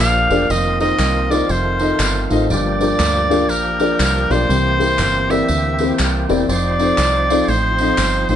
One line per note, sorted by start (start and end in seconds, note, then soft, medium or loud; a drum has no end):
0.00 0.26 A#1 loud
0.00 0.46 F3 medium
0.00 1.46 A#3 medium
0.00 0.46 D4 medium
0.00 0.48 G4 medium
0.00 0.52 F5 loud
0.30 0.47 E1 medium
0.30 0.44 D4 medium
0.30 0.44 F4 medium
0.30 0.44 G4 medium
0.30 0.44 A#4 medium
0.30 0.45 D5 medium
0.30 tambourine medium
0.50 0.92 F1 loud
0.50 1.49 D#3 medium
0.50 2.48 C4 medium
0.50 2.47 F4 medium
0.50 0.80 D#5 loud
0.50 tambourine medium
0.80 0.94 D#4 medium
0.80 0.94 F4 medium
0.80 0.94 A#4 medium
0.80 0.94 C5 medium
0.80 1.32 D#5 loud
0.80 0.94 D#5 medium
0.80 tambourine medium
0.99 1.42 C2 medium
0.99 clap medium
0.99 tambourine medium
1.30 1.44 D#4 medium
1.30 1.44 F4 medium
1.30 1.44 A#4 medium
1.30 1.44 C5 medium
1.30 1.53 D5 loud
1.30 1.45 D#5 medium
1.30 tambourine medium
1.49 1.92 F1 loud
1.49 2.49 D#3 medium
1.49 2.49 A3 medium
1.49 2.31 C5 medium
1.49 tambourine medium
1.79 1.93 D#4 medium
1.79 1.93 F4 medium
1.79 1.94 A4 medium
1.79 1.94 C5 medium
1.79 1.94 D#5 medium
1.79 tambourine medium
1.99 2.25 G1 loud
1.99 clap loud
1.99 tambourine loud
2.30 2.51 A1 medium
2.30 2.44 D#4 medium
2.30 2.44 F4 medium
2.30 2.44 A4 medium
2.30 2.44 C5 medium
2.30 2.45 D#5 loud
2.30 tambourine medium
2.50 2.92 G1 loud
2.50 3.26 G2 medium
2.50 4.48 F3 medium
2.50 6.46 A#3 medium
2.50 4.48 D4 medium
2.50 6.46 G4 medium
2.50 3.52 D5 loud
2.50 tambourine medium
2.80 2.93 D4 medium
2.80 2.94 F4 medium
2.80 2.94 G4 medium
2.80 2.94 A#4 medium
2.80 2.94 D5 medium
2.80 tambourine medium
2.99 3.50 D2 medium
2.99 clap medium
2.99 tambourine medium
3.30 3.43 D4 medium
3.30 3.44 F4 medium
3.30 3.44 G4 medium
3.30 3.44 A#4 medium
3.30 3.44 F5 loud
3.30 tambourine medium
3.49 3.92 A#1 loud
3.49 4.33 A#4 loud
3.49 tambourine medium
3.80 3.93 D4 medium
3.80 3.94 F4 medium
3.80 3.94 G4 medium
3.80 3.94 A#4 medium
3.80 3.94 D5 medium
3.80 tambourine medium
4.00 4.26 C2 loud
4.00 clap loud
4.00 tambourine loud
4.30 4.47 B1 medium
4.30 4.43 D4 medium
4.30 4.44 F4 medium
4.30 4.44 G4 medium
4.30 4.44 A#4 medium
4.30 5.32 C5 loud
4.30 4.44 D5 medium
4.30 tambourine medium
4.49 5.01 C2 loud
4.49 5.26 C3 medium
4.49 6.48 E3 medium
4.49 8.36 C4 medium
4.49 tambourine medium
4.79 4.93 C4 medium
4.79 4.93 E4 medium
4.79 4.93 G4 medium
4.79 4.93 A#4 medium
4.79 4.94 C5 medium
4.79 tambourine medium
4.99 5.42 G1 medium
4.99 clap medium
4.99 tambourine medium
5.30 5.43 C4 medium
5.30 5.43 E4 medium
5.30 5.44 G4 medium
5.30 5.44 A#4 medium
5.30 5.44 D5 medium
5.30 6.00 E5 loud
5.30 tambourine medium
5.48 5.92 D2 loud
5.48 tambourine medium
5.79 5.93 C4 medium
5.79 5.94 E4 medium
5.79 5.94 G4 medium
5.79 5.94 A#4 medium
5.79 5.94 C5 medium
5.79 tambourine medium
5.99 6.25 C2 medium
5.99 clap loud
5.99 tambourine loud
6.29 6.46 E1 loud
6.29 6.43 C4 loud
6.29 6.43 E4 medium
6.29 6.43 G4 medium
6.29 6.43 A#4 medium
6.29 6.43 D5 loud
6.29 tambourine medium
6.49 6.91 F1 loud
6.49 8.36 F3 medium
6.49 8.36 D#4 medium
6.49 8.36 C5 medium
6.49 7.51 D5 loud
6.49 tambourine medium
6.79 6.93 C4 medium
6.79 6.93 D#4 medium
6.79 6.93 F4 medium
6.79 6.93 A4 medium
6.79 6.94 C5 medium
6.79 tambourine medium
6.98 7.41 C2 loud
6.98 clap loud
6.98 tambourine medium
7.29 7.43 C4 medium
7.29 7.44 D#4 medium
7.29 7.43 F4 medium
7.29 7.44 A4 medium
7.29 7.44 D5 loud
7.29 tambourine medium
7.48 7.91 A1 loud
7.48 8.29 C5 loud
7.48 tambourine medium
7.78 7.93 C4 medium
7.78 7.94 D#4 medium
7.78 7.94 F4 medium
7.78 7.94 A4 medium
7.78 7.94 D#5 medium
7.78 tambourine medium
7.98 8.25 G1 loud
7.98 clap loud
7.98 tambourine loud
8.29 8.36 A1 medium
8.29 8.36 C4 medium
8.29 8.36 D#4 medium
8.29 8.36 F4 medium
8.29 8.36 A4 medium
8.29 8.36 C5 loud
8.29 8.36 C5 medium
8.29 tambourine medium